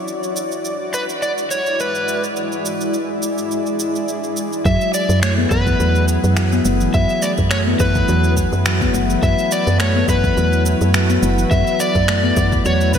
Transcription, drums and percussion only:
0.08 shaker
0.23 shaker
0.36 shaker
0.52 shaker
0.65 shaker
0.94 shaker
1.09 shaker
1.23 shaker
1.38 shaker
1.51 shaker
1.66 shaker
1.80 shaker
1.95 shaker
2.08 shaker
2.24 shaker
2.36 shaker
2.52 shaker
2.66 shaker
2.81 shaker
2.94 shaker
3.23 shaker
3.38 shaker
3.51 shaker
3.67 shaker
3.80 shaker
3.96 shaker
4.08 shaker
4.24 shaker
4.37 shaker
4.53 shaker
4.66 kick, shaker
4.81 shaker
4.94 shaker
5.10 shaker
5.23 finger snap, shaker
5.51 kick, shaker
5.67 kick, shaker
5.80 shaker
5.95 shaker
6.08 shaker
6.24 shaker
6.37 finger snap, shaker
6.52 shaker
6.65 shaker
6.81 shaker
6.94 kick, shaker
7.09 shaker
7.22 shaker
7.38 kick, shaker
7.51 finger snap, shaker
7.80 kick, shaker
7.95 kick, shaker
8.08 shaker
8.24 shaker
8.37 kick, shaker
8.53 shaker
8.66 finger snap, shaker
8.81 kick, shaker
8.94 shaker
9.10 shaker
9.23 kick, shaker
9.39 shaker
9.52 shaker
9.67 shaker
9.80 finger snap, shaker
10.08 kick, shaker
10.24 kick, shaker
10.37 shaker
10.53 shaker
10.66 shaker
10.81 shaker
10.94 finger snap, shaker
11.10 shaker
11.23 shaker
11.39 shaker
11.51 kick, shaker
11.67 shaker
11.80 shaker
11.95 kick, shaker
12.08 finger snap, shaker
12.37 kick, shaker
12.52 kick, shaker
12.65 shaker
12.81 shaker
12.94 kick, shaker

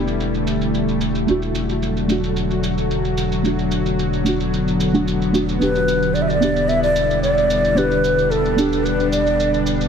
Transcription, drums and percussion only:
0.08 shaker
0.20 shaker
0.34 shaker
0.47 shaker
0.61 shaker
0.75 shaker
0.89 shaker
1.01 shaker
1.15 shaker
1.28 shaker
1.42 shaker
1.55 shaker
1.69 shaker
1.83 shaker
1.97 shaker
2.09 shaker
2.24 shaker
2.37 shaker
2.51 shaker
2.64 shaker
2.78 shaker
2.91 shaker
3.05 shaker
3.18 shaker
3.32 shaker
3.45 shaker
3.59 shaker
3.72 shaker
3.86 shaker
3.99 shaker
4.13 shaker
4.26 shaker
4.40 shaker
4.54 shaker
4.68 shaker
4.81 shaker
4.95 shaker
5.08 shaker
5.22 shaker
5.35 shaker
5.49 shaker
5.62 shaker
5.75 shaker
5.88 shaker
6.03 shaker
6.15 shaker
6.30 shaker
6.42 shaker
6.56 shaker
6.69 shaker
6.83 shaker
6.96 shaker
7.11 shaker
7.24 shaker
7.38 shaker
7.50 shaker
7.65 shaker
7.77 shaker
7.92 shaker
8.04 shaker
8.19 shaker
8.31 shaker
8.46 shaker
8.58 shaker
8.73 shaker
8.86 shaker
9.00 shaker
9.13 shaker
9.27 shaker
9.40 shaker
9.54 shaker
9.67 shaker
9.81 shaker

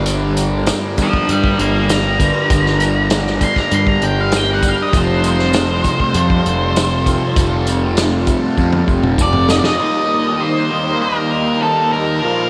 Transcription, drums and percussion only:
0.06 closed hi-hat, tambourine
0.37 closed hi-hat, tambourine
0.67 snare, closed hi-hat, tambourine
0.98 kick, closed hi-hat, tambourine
1.13 kick
1.29 closed hi-hat
1.44 kick
1.59 closed hi-hat
1.89 snare, closed hi-hat, tambourine
2.20 kick, closed hi-hat, tambourine
2.50 kick, closed hi-hat, tambourine
2.66 snare
2.80 closed hi-hat, tambourine
3.10 snare, closed hi-hat, tambourine
3.27 snare
3.41 kick, closed hi-hat, tambourine
3.56 kick, snare
3.71 closed hi-hat
3.87 kick
4.02 closed hi-hat
4.32 snare, closed hi-hat, tambourine
4.63 kick, closed hi-hat, tambourine
4.93 kick, closed hi-hat, tambourine
5.24 closed hi-hat, tambourine
5.39 snare
5.53 snare, closed hi-hat, tambourine
5.84 kick, closed hi-hat, tambourine
6.00 kick
6.14 closed hi-hat
6.30 kick
6.46 closed hi-hat
6.76 snare, closed hi-hat, tambourine
7.06 kick, closed hi-hat, tambourine
7.36 kick, closed hi-hat, tambourine
7.67 closed hi-hat, tambourine
7.97 snare, closed hi-hat, tambourine
8.27 kick, closed hi-hat, tambourine
8.58 kick, tambourine
8.73 high tom
8.88 kick, tambourine
9.03 mid tom
9.18 kick, tambourine
9.33 mid tom
9.49 snare, tambourine
9.64 snare

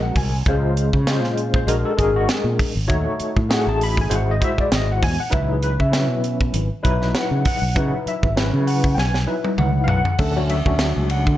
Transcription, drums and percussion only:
0.15 kick, open hi-hat
0.46 kick, closed hi-hat
0.77 closed hi-hat
0.93 kick
1.07 snare, closed hi-hat
1.24 snare
1.37 closed hi-hat
1.54 kick
1.68 closed hi-hat
1.99 kick, closed hi-hat
2.29 snare, closed hi-hat
2.59 kick, open hi-hat
2.90 kick, closed hi-hat
3.20 closed hi-hat
3.37 kick
3.51 snare, closed hi-hat
3.81 open hi-hat
3.97 kick
4.11 closed hi-hat
4.42 kick, closed hi-hat
4.58 kick
4.72 snare, closed hi-hat
5.03 kick, open hi-hat
5.32 kick, closed hi-hat
5.63 closed hi-hat
5.80 kick
5.93 snare, closed hi-hat
6.24 closed hi-hat
6.41 kick
6.54 closed hi-hat
6.85 kick, closed hi-hat
7.02 snare
7.15 snare, closed hi-hat
7.45 kick, open hi-hat
7.76 kick, closed hi-hat
8.07 closed hi-hat
8.23 kick
8.37 snare, closed hi-hat
8.67 open hi-hat
8.84 kick
8.98 snare
9.14 snare
9.45 high tom
9.58 mid tom
9.88 floor tom
10.05 floor tom
10.18 kick, crash
10.49 ride bell
10.66 kick
10.79 snare, ride bell
11.10 ride bell
11.27 kick

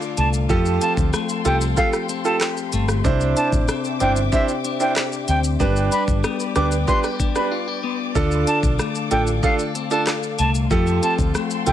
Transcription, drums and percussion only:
0.02 shaker
0.17 closed hi-hat, shaker
0.34 shaker
0.50 kick, shaker
0.65 shaker
0.81 closed hi-hat, shaker
0.97 kick, shaker
1.13 cross-stick, shaker
1.29 shaker
1.45 closed hi-hat, shaker
1.61 shaker
1.77 kick, shaker
1.93 cross-stick, shaker
2.09 closed hi-hat, shaker
2.25 shaker
2.41 cross-stick, clap, shaker
2.57 shaker
2.72 closed hi-hat, shaker
2.89 cross-stick, shaker
3.05 kick, shaker
3.21 shaker
3.37 closed hi-hat, shaker
3.53 kick, shaker
3.69 cross-stick, shaker
3.84 shaker
4.00 closed hi-hat, shaker
4.16 shaker
4.32 kick, shaker
4.48 shaker
4.65 closed hi-hat, shaker
4.80 shaker
4.96 cross-stick, clap, shaker
5.12 shaker
5.28 closed hi-hat, shaker
5.44 shaker
5.60 kick, shaker
5.76 shaker
5.92 closed hi-hat, shaker
6.08 kick, shaker
6.24 cross-stick, shaker
6.40 shaker
6.56 cross-stick, closed hi-hat, shaker
6.72 shaker
6.88 kick, shaker
7.04 cross-stick, shaker
7.20 kick, closed hi-hat, shaker
7.35 cross-stick, shaker
8.15 kick, shaker
8.31 shaker
8.47 closed hi-hat, shaker
8.63 kick, shaker
8.79 cross-stick, shaker
8.95 shaker
9.11 closed hi-hat, shaker
9.27 shaker
9.43 kick, shaker
9.59 shaker
9.75 closed hi-hat, shaker
9.91 shaker
10.07 cross-stick, clap, shaker
10.23 shaker
10.39 closed hi-hat, shaker
10.55 shaker
10.71 kick, shaker
10.87 shaker
11.03 closed hi-hat, shaker
11.19 kick, shaker
11.35 cross-stick, shaker
11.51 shaker
11.67 closed hi-hat, shaker

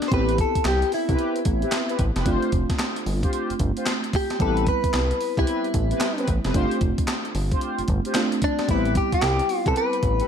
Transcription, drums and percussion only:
0.02 snare, closed hi-hat
0.12 kick, closed hi-hat
0.29 closed hi-hat
0.38 kick, closed hi-hat
0.55 kick, closed hi-hat
0.65 snare, clap, closed hi-hat
0.82 closed hi-hat
0.92 open hi-hat
1.09 kick, closed hi-hat
1.19 closed hi-hat
1.36 closed hi-hat
1.45 kick, closed hi-hat
1.62 closed hi-hat
1.72 snare, clap, closed hi-hat
1.89 closed hi-hat
1.99 kick, closed hi-hat
2.16 snare, closed hi-hat
2.26 kick, closed hi-hat
2.43 closed hi-hat
2.52 kick, closed hi-hat
2.70 kick, snare, closed hi-hat
2.79 snare, clap, closed hi-hat
2.96 closed hi-hat
3.06 open hi-hat
3.23 kick, closed hi-hat
3.33 closed hi-hat
3.50 closed hi-hat
3.59 kick, closed hi-hat
3.77 closed hi-hat
3.86 snare, clap, closed hi-hat
4.04 closed hi-hat
4.13 kick, open hi-hat
4.30 snare, closed hi-hat
4.40 kick, closed hi-hat
4.57 closed hi-hat
4.67 kick, closed hi-hat
4.84 kick, closed hi-hat
4.94 snare, clap, closed hi-hat
5.11 closed hi-hat
5.21 open hi-hat
5.37 kick, closed hi-hat
5.47 closed hi-hat
5.64 closed hi-hat
5.74 kick, closed hi-hat
5.91 closed hi-hat
6.01 snare, clap, closed hi-hat
6.18 closed hi-hat
6.28 kick, closed hi-hat
6.44 snare, closed hi-hat
6.54 kick, closed hi-hat
6.71 closed hi-hat
6.81 kick, closed hi-hat
6.98 kick, closed hi-hat
7.08 snare, clap, closed hi-hat
7.25 closed hi-hat
7.35 open hi-hat
7.51 kick, closed hi-hat
7.61 closed hi-hat
7.79 closed hi-hat
7.88 kick, closed hi-hat
8.05 closed hi-hat
8.15 snare, clap, closed hi-hat
8.32 closed hi-hat
8.42 kick, closed hi-hat
8.59 snare, closed hi-hat
8.69 kick, closed hi-hat
8.85 closed hi-hat
8.95 kick, closed hi-hat
9.12 kick, closed hi-hat
9.22 snare, clap, closed hi-hat
9.39 closed hi-hat
9.49 open hi-hat
9.66 kick, closed hi-hat
9.76 closed hi-hat
9.93 closed hi-hat
10.03 kick, closed hi-hat
10.20 closed hi-hat

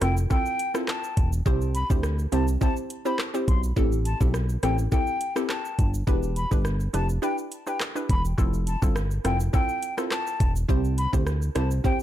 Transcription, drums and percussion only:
0.02 cross-stick, closed hi-hat, shaker
0.17 shaker
0.30 kick, shaker
0.46 shaker
0.59 closed hi-hat, shaker
0.75 cross-stick, shaker
0.88 cross-stick, clap, shaker
1.04 shaker
1.17 kick, closed hi-hat, shaker
1.33 shaker
1.46 kick, shaker
1.61 shaker
1.75 closed hi-hat, shaker
1.90 kick, shaker
2.03 cross-stick, shaker
2.19 shaker
2.32 closed hi-hat, shaker
2.48 shaker
2.61 kick, shaker
2.76 shaker
2.90 closed hi-hat, shaker
3.06 shaker
3.19 cross-stick, clap, shaker
3.34 shaker
3.48 kick, closed hi-hat, shaker
3.63 shaker
3.77 kick, shaker
3.92 shaker
4.05 closed hi-hat, shaker
4.21 kick, shaker
4.34 cross-stick, shaker
4.49 shaker
4.63 cross-stick, closed hi-hat, shaker
4.78 shaker
4.92 kick, shaker
5.07 shaker
5.21 closed hi-hat, shaker
5.36 cross-stick, shaker
5.50 cross-stick, clap, shaker
5.65 shaker
5.79 kick, closed hi-hat, shaker
5.94 shaker
6.07 kick, shaker
6.23 shaker
6.36 closed hi-hat, shaker
6.52 kick, shaker
6.65 cross-stick, shaker
6.80 shaker
6.94 closed hi-hat, shaker
7.09 shaker
7.23 shaker
7.38 shaker
7.52 closed hi-hat, shaker
7.67 shaker
7.80 cross-stick, clap, shaker
7.96 shaker
8.09 kick, closed hi-hat, shaker
8.25 shaker
8.38 kick, shaker
8.54 shaker
8.67 closed hi-hat, shaker
8.82 kick, shaker
8.96 cross-stick, shaker
9.11 shaker
9.25 cross-stick, closed hi-hat, shaker
9.40 shaker
9.53 kick, shaker
9.69 shaker
9.83 closed hi-hat, shaker
9.98 cross-stick, shaker
10.11 cross-stick, clap, shaker
10.27 shaker
10.40 kick, closed hi-hat, shaker
10.56 shaker
10.69 kick, shaker
10.85 shaker
10.98 closed hi-hat, shaker
11.13 kick, shaker
11.27 cross-stick, shaker
11.42 shaker
11.56 cross-stick, closed hi-hat, shaker
11.71 shaker
11.84 kick, shaker
12.00 shaker

